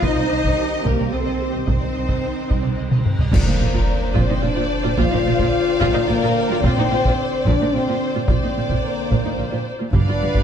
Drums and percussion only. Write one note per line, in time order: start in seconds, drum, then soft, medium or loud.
0.03 taiko medium
0.44 taiko medium
0.85 taiko medium
1.68 taiko medium
2.09 taiko medium
2.50 taiko medium
2.91 taiko mid medium
3.06 taiko low-mid medium
3.19 taiko low medium
3.32 concert bass drum medium
3.32 taiko medium
3.32 crash medium
3.74 taiko medium
4.15 taiko medium
4.98 taiko loud
5.39 taiko medium
5.81 taiko medium
6.64 taiko loud
7.05 taiko medium
7.46 taiko medium
8.28 taiko loud
8.70 taiko medium
9.11 taiko medium
9.93 taiko loud
10.35 taiko medium